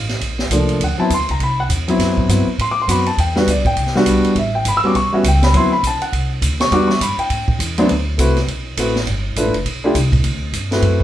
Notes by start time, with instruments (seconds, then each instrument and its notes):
Already playing: upright bass A1, grand piano F5
0.09 snare, ride
0.21 upright bass A#1, kick, ride
0.39 snare
0.50 upright bass C2, grand piano F3 A3 A#3 D4, kick, hi-hat pedal, ride
0.69 ride
0.80 upright bass D2, kick, ride
0.84 grand piano F#5
0.98 grand piano F#3 B3 C4 E4 A5
1.10 upright bass E2, kick, hi-hat pedal, ride
1.14 grand piano C6
1.19 upright bass D2
1.29 upright bass C2, grand piano A#5, ride
1.39 upright bass C2, grand piano B5, kick, ride
1.60 grand piano F#5
1.69 upright bass E2, kick, hi-hat pedal, ride
1.88 grand piano F#3 B3 C4 E4, ride
1.98 upright bass F#2, kick, snare, ride
2.17 kick
2.28 upright bass G2, grand piano F#3 B3 C4 E4, kick, hi-hat pedal, ride
2.47 muted upright bass stroke
2.58 upright bass A2, grand piano C6, kick, ride
2.71 grand piano D6
2.82 grand piano C6
2.87 upright bass F#2, grand piano F#3 B3 C4 F#4 B5, kick, hi-hat pedal, ride
3.06 grand piano A5, ride
3.17 upright bass E2, grand piano G5, kick, ride
3.35 grand piano G3 B3 D4 F#4 B4, snare
3.46 upright bass D2, kick, hi-hat pedal, ride
3.51 grand piano D5
3.56 upright bass B1
3.65 upright bass G1, grand piano G5, kick, ride
3.76 upright bass C2, kick, ride
3.87 snare
3.95 grand piano G3 B3 D4 F#4, snare
4.05 upright bass B1, kick, hi-hat pedal, ride
4.24 ride
4.35 upright bass A1, grand piano E5, kick, ride
4.55 grand piano G5
4.65 upright bass G1, grand piano B5, kick, hi-hat pedal, ride
4.77 grand piano E6
4.81 grand piano G3 B3 C#4 F#4, muted upright bass stroke
4.87 grand piano D6
4.94 upright bass B1, grand piano C#6, kick, ride
5.12 grand piano G3 B3 C#4 F#4 E5, muted upright bass stroke
5.23 upright bass C#2, kick, hi-hat pedal, ride
5.28 grand piano G5
5.42 grand piano B5, snare, ride
5.53 upright bass D2, grand piano F#3 B3 C4 E4 C6, kick, ride
5.73 grand piano B5
5.83 upright bass B1, kick, hi-hat pedal, ride
5.87 grand piano A5
6.01 grand piano F#5, muted upright bass stroke, ride
6.12 upright bass C2, kick, ride
6.42 upright bass D2, kick, hi-hat pedal, ride
6.60 grand piano C#6, snare, ride
6.71 upright bass E2, grand piano G3 B3 D4 F#4 D6, kick, ride
6.88 grand piano C#6, snare
7.00 upright bass G2, grand piano B5, kick, hi-hat pedal, ride
7.17 grand piano G5, muted upright bass stroke, ride
7.30 upright bass A2, kick, ride
7.48 muted upright bass stroke, kick
7.59 upright bass E2, kick, hi-hat pedal, ride
7.78 grand piano D2 F#3 B3 C4 D4, ride
7.88 upright bass D2, kick, ride
8.18 upright bass C2, grand piano A3 C4 E4 F#4 B4, kick, hi-hat pedal, ride
8.36 snare, ride
8.47 upright bass B1, kick, ride
8.77 upright bass A1, grand piano A3 C4 E4 F#4 B4, kick, hi-hat pedal, ride
8.96 snare
9.06 upright bass G1, kick, ride
9.36 upright bass A1, grand piano A3 D4 E4 F4 B4, kick, hi-hat pedal, ride
9.45 upright bass G1
9.54 upright bass F1, ride
9.65 upright bass B1, kick, ride
9.84 grand piano A3 D4 E4 F4 G4
9.94 upright bass C2, kick, hi-hat pedal, ride
10.12 kick, ride
10.24 upright bass D2, kick, ride
10.53 upright bass G2, kick, hi-hat pedal, ride
10.71 grand piano A3 C4 E4 F#4 B4, snare, ride
10.82 upright bass F#2, kick, ride
11.00 kick